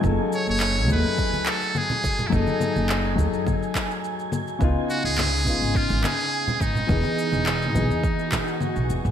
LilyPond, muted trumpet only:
\new Staff \with { instrumentName = "Muted trumpet" } { \time 4/4 \key fis \dorian \tempo 4 = 105 r8 cis''16 cis''8. b'4 a'8 gis'8.~ gis'32 e'32 | dis'4. r2 r8 | r8 fis'16 gis'4~ gis'16 eis'8 gis'4 dis'8~ | dis'2.~ dis'8 r8 | }